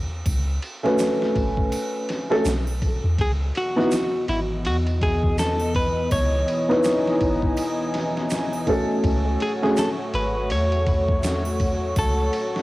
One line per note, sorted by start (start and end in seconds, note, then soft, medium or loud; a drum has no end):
0.00 0.23 E2 loud
0.26 0.59 C#2 medium
0.26 kick loud
0.26 ride medium
0.26 triangle medium
0.63 ride medium
0.83 2.26 A3 medium
0.83 2.26 C#4 medium
0.83 2.27 F#4 medium
0.83 2.27 B4 medium
0.83 snare soft
0.99 snare loud
0.99 ride medium
0.99 shaker medium
1.22 snare soft
1.36 1.69 G#1 medium
1.36 kick medium
1.36 ride medium
1.57 kick medium
1.72 ride medium
1.72 triangle medium
2.09 snare soft
2.09 ride medium
2.30 2.46 A3 medium
2.30 2.46 C#4 medium
2.30 2.46 F#4 medium
2.30 2.46 A4 medium
2.30 snare soft
2.45 2.99 B1 medium
2.45 snare loud
2.45 ride medium
2.45 shaker medium
2.67 triangle medium
2.82 kick medium
2.82 ride medium
3.04 3.17 E2 medium
3.18 3.52 C#2 medium
3.18 9.00 E3 medium
3.18 9.00 B3 medium
3.18 6.08 F#4 medium
3.18 3.31 G#4 medium
3.18 9.00 D#5 medium
3.18 kick loud
3.18 ride medium
3.55 4.25 F#4 medium
3.55 ride medium
3.76 3.92 B3 medium
3.76 3.92 D#4 medium
3.76 3.92 E4 medium
3.76 3.92 F#4 loud
3.76 snare soft
3.91 snare loud
3.91 ride medium
3.91 shaker medium
4.28 4.67 G#1 medium
4.28 4.39 E4 medium
4.28 ride medium
4.65 6.08 E2 loud
4.65 4.76 F#4 medium
4.65 ride medium
4.87 ride soft
5.01 5.36 G#4 medium
5.01 kick medium
5.01 ride medium
5.23 kick medium
5.38 5.75 A4 medium
5.38 snare loud
5.38 ride medium
5.38 shaker medium
5.60 triangle medium
5.75 6.12 B4 medium
5.75 kick medium
5.75 ride medium
6.11 6.44 C#2 loud
6.11 8.64 C#5 loud
6.11 9.01 G#5 medium
6.11 kick loud
6.11 ride medium
6.11 triangle medium
6.48 ride medium
6.69 8.63 B3 medium
6.69 8.64 D#4 medium
6.69 8.64 E4 medium
6.69 8.65 B4 loud
6.69 snare soft
6.84 snare loud
6.84 ride medium
6.84 shaker medium
7.07 snare soft
7.21 7.54 G#1 medium
7.21 kick medium
7.21 ride medium
7.43 kick medium
7.57 ride medium
7.57 triangle medium
7.94 snare soft
7.94 ride medium
8.17 snare soft
8.30 snare loud
8.30 ride medium
8.30 shaker medium
8.53 triangle medium
8.67 9.57 A3 medium
8.67 9.57 C#4 medium
8.67 9.58 F#4 medium
8.67 9.58 A4 medium
8.67 kick medium
8.67 ride medium
9.02 9.37 C#2 loud
9.02 12.62 A3 medium
9.02 12.62 F#4 medium
9.02 12.62 C#5 medium
9.02 kick loud
9.02 ride medium
9.40 9.52 G#4 medium
9.40 ride medium
9.62 9.77 A3 medium
9.62 9.78 C#4 medium
9.62 9.78 F#4 medium
9.62 9.78 G#4 loud
9.62 snare soft
9.77 9.89 A4 medium
9.77 snare loud
9.77 ride medium
9.77 shaker medium
10.14 10.52 G#1 medium
10.14 10.51 B4 medium
10.14 ride medium
10.50 11.94 E2 loud
10.50 11.98 C#5 loud
10.50 ride medium
10.72 ride soft
10.87 kick medium
10.87 ride medium
11.09 kick medium
11.23 snare loud
11.23 ride medium
11.23 shaker medium
11.45 triangle medium
11.60 kick medium
11.60 ride medium
11.96 12.30 C#2 medium
11.96 12.62 A4 medium
11.96 kick loud
11.96 ride medium
11.96 triangle medium
12.33 ride medium
12.56 snare soft